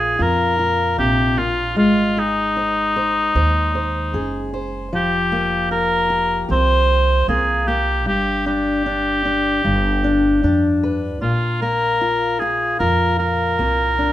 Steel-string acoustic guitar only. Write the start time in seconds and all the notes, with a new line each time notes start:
Already playing: A#2 A#3 F4
0.19 F4
0.59 F4
0.98 C3
1.37 A#2
1.76 G#3
2.17 G#4
2.57 C5
2.96 C5
3.36 C5
3.75 C5
4.14 G#4
4.54 C5
4.93 F3
5.32 A#3
5.71 G4
6.10 G4
6.49 G4
7.29 A#3
7.68 A#3
8.06 G2
8.46 D4
8.86 D4
9.25 D4
9.64 G2
10.04 D4
10.44 D4
10.83 B4
11.22 A#2
11.62 A#3
12.01 F4
12.42 F4
12.80 F4
13.20 F4
13.59 A#3
13.99 D4